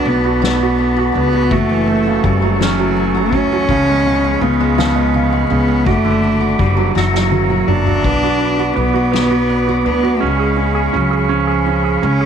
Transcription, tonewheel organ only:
0, 0, Header, 1, 2, 480
1, 0, Start_track
1, 0, Key_signature, 2, "minor"
1, 0, Tempo, 725251
1, 999, Time_signature, 6, 3, 24, 8
1, 8112, End_track
2, 0, Start_track
2, 0, Title_t, "Tonewheel organ"
2, 0, Program_c, 0, 16
2, 0, Note_on_c, 0, 66, 53
2, 0, Note_on_c, 0, 74, 48
2, 0, Note_on_c, 0, 81, 52
2, 0, Note_on_c, 0, 83, 65
2, 984, Note_off_c, 0, 83, 0
2, 986, Note_off_c, 0, 74, 0
2, 992, Note_on_c, 0, 76, 57
2, 997, Note_on_c, 0, 85, 62
2, 2413, Note_off_c, 0, 81, 0
2, 2416, Note_off_c, 0, 66, 0
2, 2421, Note_off_c, 0, 76, 0
2, 2447, Note_on_c, 0, 77, 56
2, 2448, Note_on_c, 0, 83, 58
2, 2449, Note_on_c, 0, 68, 63
2, 3852, Note_off_c, 0, 85, 0
2, 3868, Note_off_c, 0, 77, 0
2, 3870, Note_off_c, 0, 68, 0
2, 3883, Note_on_c, 0, 74, 60
2, 3884, Note_on_c, 0, 86, 72
2, 3888, Note_on_c, 0, 66, 57
2, 4582, Note_off_c, 0, 83, 0
2, 4594, Note_off_c, 0, 74, 0
2, 4594, Note_off_c, 0, 86, 0
2, 4596, Note_off_c, 0, 66, 0
2, 4613, Note_on_c, 0, 66, 59
2, 4615, Note_on_c, 0, 82, 50
2, 4617, Note_on_c, 0, 76, 55
2, 4620, Note_on_c, 0, 85, 58
2, 5320, Note_off_c, 0, 82, 0
2, 5321, Note_off_c, 0, 76, 0
2, 5323, Note_off_c, 0, 85, 0
2, 5333, Note_on_c, 0, 83, 54
2, 5336, Note_on_c, 0, 86, 64
2, 5341, Note_on_c, 0, 74, 57
2, 6746, Note_off_c, 0, 66, 0
2, 6754, Note_off_c, 0, 86, 0
2, 6757, Note_off_c, 0, 74, 0
2, 6769, Note_on_c, 0, 85, 66
2, 6770, Note_on_c, 0, 68, 61
2, 6772, Note_on_c, 0, 77, 57
2, 8112, Note_off_c, 0, 68, 0
2, 8112, Note_off_c, 0, 77, 0
2, 8112, Note_off_c, 0, 83, 0
2, 8112, Note_off_c, 0, 85, 0
2, 8112, End_track
0, 0, End_of_file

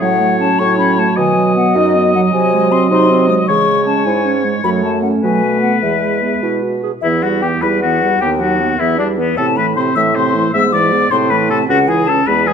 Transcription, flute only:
0, 0, Header, 1, 2, 480
1, 0, Start_track
1, 0, Key_signature, 4, "major"
1, 0, Tempo, 385852
1, 12, Time_signature, 6, 3, 24, 8
1, 5772, Tempo, 395778
1, 8665, Key_signature, 1, "minor"
1, 10572, Tempo, 386598
1, 15458, End_track
2, 0, Start_track
2, 0, Title_t, "Flute"
2, 0, Program_c, 0, 73
2, 19, Note_on_c, 0, 78, 70
2, 488, Note_off_c, 0, 78, 0
2, 494, Note_on_c, 0, 81, 68
2, 737, Note_on_c, 0, 85, 78
2, 756, Note_off_c, 0, 81, 0
2, 971, Note_off_c, 0, 85, 0
2, 979, Note_on_c, 0, 83, 69
2, 1230, Note_on_c, 0, 81, 64
2, 1248, Note_off_c, 0, 83, 0
2, 1462, Note_off_c, 0, 81, 0
2, 1467, Note_on_c, 0, 80, 74
2, 1934, Note_off_c, 0, 80, 0
2, 1946, Note_on_c, 0, 78, 67
2, 2188, Note_on_c, 0, 75, 73
2, 2206, Note_off_c, 0, 78, 0
2, 2662, Note_off_c, 0, 75, 0
2, 2674, Note_on_c, 0, 78, 67
2, 2749, Note_off_c, 0, 78, 0
2, 2899, Note_on_c, 0, 80, 77
2, 3381, Note_on_c, 0, 84, 67
2, 3400, Note_off_c, 0, 80, 0
2, 3608, Note_off_c, 0, 84, 0
2, 3616, Note_on_c, 0, 84, 81
2, 4081, Note_off_c, 0, 84, 0
2, 4089, Note_on_c, 0, 87, 62
2, 4164, Note_off_c, 0, 87, 0
2, 4320, Note_on_c, 0, 85, 86
2, 4797, Note_off_c, 0, 85, 0
2, 4805, Note_on_c, 0, 81, 62
2, 5043, Note_on_c, 0, 80, 56
2, 5062, Note_off_c, 0, 81, 0
2, 5444, Note_off_c, 0, 80, 0
2, 5771, Note_on_c, 0, 83, 79
2, 5844, Note_off_c, 0, 83, 0
2, 6002, Note_on_c, 0, 81, 44
2, 6226, Note_off_c, 0, 81, 0
2, 6233, Note_on_c, 0, 78, 51
2, 6306, Note_off_c, 0, 78, 0
2, 6477, Note_on_c, 0, 80, 61
2, 6944, Note_off_c, 0, 80, 0
2, 6952, Note_on_c, 0, 78, 48
2, 7191, Note_off_c, 0, 78, 0
2, 7198, Note_on_c, 0, 76, 54
2, 7916, Note_off_c, 0, 76, 0
2, 8650, Note_on_c, 0, 76, 63
2, 8723, Note_off_c, 0, 76, 0
2, 8903, Note_on_c, 0, 78, 49
2, 8975, Note_off_c, 0, 78, 0
2, 9136, Note_on_c, 0, 79, 58
2, 9209, Note_off_c, 0, 79, 0
2, 9381, Note_on_c, 0, 83, 70
2, 9454, Note_off_c, 0, 83, 0
2, 9617, Note_on_c, 0, 78, 55
2, 10099, Note_on_c, 0, 79, 58
2, 10117, Note_off_c, 0, 78, 0
2, 10337, Note_on_c, 0, 78, 56
2, 10355, Note_off_c, 0, 79, 0
2, 10794, Note_off_c, 0, 78, 0
2, 10801, Note_on_c, 0, 76, 65
2, 11042, Note_off_c, 0, 76, 0
2, 11049, Note_on_c, 0, 74, 52
2, 11123, Note_off_c, 0, 74, 0
2, 11289, Note_on_c, 0, 71, 59
2, 11540, Note_on_c, 0, 81, 79
2, 11559, Note_off_c, 0, 71, 0
2, 11775, Note_on_c, 0, 83, 67
2, 11793, Note_off_c, 0, 81, 0
2, 12008, Note_off_c, 0, 83, 0
2, 12015, Note_on_c, 0, 84, 61
2, 12090, Note_off_c, 0, 84, 0
2, 12255, Note_on_c, 0, 88, 77
2, 12330, Note_off_c, 0, 88, 0
2, 12498, Note_on_c, 0, 84, 62
2, 12960, Note_off_c, 0, 84, 0
2, 12967, Note_on_c, 0, 88, 86
2, 13214, Note_on_c, 0, 86, 75
2, 13232, Note_off_c, 0, 88, 0
2, 13679, Note_off_c, 0, 86, 0
2, 13686, Note_on_c, 0, 84, 81
2, 13760, Note_off_c, 0, 84, 0
2, 13931, Note_on_c, 0, 83, 68
2, 14006, Note_off_c, 0, 83, 0
2, 14167, Note_on_c, 0, 81, 68
2, 14396, Note_off_c, 0, 81, 0
2, 14403, Note_on_c, 0, 78, 84
2, 14649, Note_on_c, 0, 80, 70
2, 14667, Note_off_c, 0, 78, 0
2, 14878, Note_on_c, 0, 81, 73
2, 14897, Note_off_c, 0, 80, 0
2, 15126, Note_on_c, 0, 83, 84
2, 15145, Note_off_c, 0, 81, 0
2, 15359, Note_off_c, 0, 83, 0
2, 15366, Note_on_c, 0, 80, 69
2, 15458, Note_off_c, 0, 80, 0
2, 15458, End_track
0, 0, End_of_file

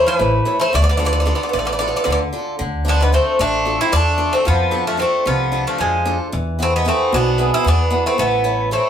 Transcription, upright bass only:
0, 0, Header, 1, 2, 480
1, 0, Start_track
1, 0, Tempo, 531444
1, 667, Time_signature, 7, 3, 24, 8
1, 8035, End_track
2, 0, Start_track
2, 0, Title_t, "Upright bass"
2, 0, Program_c, 0, 32
2, 187, Note_on_c, 0, 33, 90
2, 355, Note_off_c, 0, 33, 0
2, 669, Note_on_c, 0, 38, 99
2, 1173, Note_off_c, 0, 38, 0
2, 1387, Note_on_c, 0, 33, 84
2, 1723, Note_off_c, 0, 33, 0
2, 1869, Note_on_c, 0, 38, 86
2, 2036, Note_off_c, 0, 38, 0
2, 2354, Note_on_c, 0, 38, 94
2, 2856, Note_off_c, 0, 38, 0
2, 3067, Note_on_c, 0, 33, 96
2, 3403, Note_off_c, 0, 33, 0
2, 3547, Note_on_c, 0, 40, 76
2, 3883, Note_off_c, 0, 40, 0
2, 4039, Note_on_c, 0, 41, 95
2, 4539, Note_off_c, 0, 41, 0
2, 4755, Note_on_c, 0, 36, 88
2, 5089, Note_off_c, 0, 36, 0
2, 5243, Note_on_c, 0, 41, 80
2, 5574, Note_off_c, 0, 41, 0
2, 5720, Note_on_c, 0, 40, 108
2, 6220, Note_off_c, 0, 40, 0
2, 6438, Note_on_c, 0, 35, 84
2, 6771, Note_off_c, 0, 35, 0
2, 6915, Note_on_c, 0, 40, 87
2, 7249, Note_off_c, 0, 40, 0
2, 7395, Note_on_c, 0, 33, 102
2, 7897, Note_off_c, 0, 33, 0
2, 8035, End_track
0, 0, End_of_file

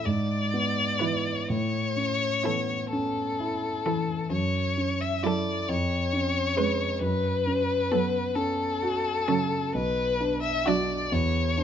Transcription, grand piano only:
0, 0, Header, 1, 2, 480
1, 0, Start_track
1, 0, Key_signature, 3, "major"
1, 0, Tempo, 956938
1, 746, Time_signature, 6, 3, 24, 8
1, 1230, Tempo, 930233
1, 2670, Tempo, 896861
1, 4590, Tempo, 916031
1, 6060, End_track
2, 0, Start_track
2, 0, Title_t, "Grand piano"
2, 0, Program_c, 0, 0
2, 0, Control_c, 0, 64, 127
2, 29, Note_on_c, 0, 44, 39
2, 38, Control_c, 0, 64, 0
2, 109, Control_c, 0, 64, 127
2, 269, Note_on_c, 0, 59, 29
2, 501, Note_on_c, 0, 71, 31
2, 502, Note_on_c, 0, 64, 28
2, 651, Note_off_c, 0, 59, 0
2, 725, Note_off_c, 0, 64, 0
2, 725, Note_off_c, 0, 71, 0
2, 726, Note_off_c, 0, 44, 0
2, 751, Note_on_c, 0, 45, 38
2, 755, Control_c, 0, 64, 0
2, 825, Control_c, 0, 64, 127
2, 985, Note_on_c, 0, 61, 30
2, 1228, Note_on_c, 0, 59, 26
2, 1375, Note_off_c, 0, 61, 0
2, 1473, Note_off_c, 0, 59, 0
2, 1475, Note_on_c, 0, 61, 36
2, 1719, Note_on_c, 0, 64, 33
2, 1857, Note_off_c, 0, 61, 0
2, 1955, Note_on_c, 0, 52, 33
2, 2099, Note_off_c, 0, 64, 0
2, 2175, Note_off_c, 0, 45, 0
2, 2183, Note_on_c, 0, 42, 39
2, 2194, Note_off_c, 0, 52, 0
2, 2202, Control_c, 0, 64, 0
2, 2287, Control_c, 0, 64, 127
2, 2427, Note_on_c, 0, 61, 32
2, 2676, Note_on_c, 0, 69, 37
2, 2677, Note_on_c, 0, 64, 33
2, 2812, Note_off_c, 0, 61, 0
2, 2885, Note_off_c, 0, 42, 0
2, 2892, Note_off_c, 0, 69, 0
2, 2893, Note_off_c, 0, 64, 0
2, 2908, Note_on_c, 0, 41, 47
2, 2919, Control_c, 0, 64, 0
2, 3011, Control_c, 0, 64, 127
2, 3145, Note_on_c, 0, 61, 36
2, 3374, Note_on_c, 0, 68, 35
2, 3380, Note_on_c, 0, 71, 34
2, 3529, Note_off_c, 0, 61, 0
2, 3600, Note_off_c, 0, 68, 0
2, 3602, Note_off_c, 0, 71, 0
2, 3604, Note_off_c, 0, 41, 0
2, 3615, Note_on_c, 0, 42, 37
2, 3636, Control_c, 0, 64, 0
2, 3714, Control_c, 0, 64, 127
2, 3860, Note_on_c, 0, 61, 38
2, 4099, Note_on_c, 0, 59, 33
2, 4249, Note_off_c, 0, 61, 0
2, 4336, Note_on_c, 0, 61, 43
2, 4344, Note_off_c, 0, 59, 0
2, 4589, Note_on_c, 0, 66, 39
2, 4727, Note_off_c, 0, 61, 0
2, 4827, Note_on_c, 0, 49, 38
2, 4974, Note_off_c, 0, 66, 0
2, 5044, Note_off_c, 0, 42, 0
2, 5069, Note_on_c, 0, 35, 42
2, 5070, Note_off_c, 0, 49, 0
2, 5080, Control_c, 0, 64, 0
2, 5170, Control_c, 0, 64, 127
2, 5309, Note_on_c, 0, 62, 39
2, 5551, Note_on_c, 0, 66, 39
2, 5691, Note_off_c, 0, 62, 0
2, 5766, Note_off_c, 0, 35, 0
2, 5769, Note_off_c, 0, 66, 0
2, 5790, Note_on_c, 0, 40, 47
2, 5796, Control_c, 0, 64, 0
2, 5875, Control_c, 0, 64, 127
2, 6028, Note_on_c, 0, 62, 41
2, 6060, Note_off_c, 0, 40, 0
2, 6060, Note_off_c, 0, 62, 0
2, 6060, End_track
0, 0, End_of_file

